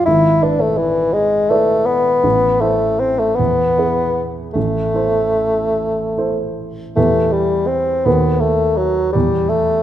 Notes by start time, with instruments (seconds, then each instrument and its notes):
0.06 grand piano G#1, bassoon E4
0.42 bassoon D4, grand piano E4 B4 D5
0.61 bassoon A3
0.78 bassoon E3
1.13 bassoon G#3
1.50 bassoon A3, grand piano E4 B4 D5
1.86 bassoon B3
2.24 grand piano A1
2.61 bassoon A3, grand piano E4 A4 C5
3.00 bassoon C4
3.19 bassoon A3
3.36 grand piano E2, bassoon B3
3.78 grand piano E4 G#4 B4
4.53 grand piano A1, bassoon A3
4.94 grand piano E4 A4 C5
6.18 grand piano E4 A4 C5
6.96 grand piano E2 E4 G4 B4, bassoon A3
7.32 bassoon G3
7.67 bassoon C4
8.05 grand piano D#2 F#4 A4 B4, bassoon B3
8.41 bassoon A3
8.77 bassoon F#3
9.13 grand piano E2, bassoon G3
9.49 bassoon A3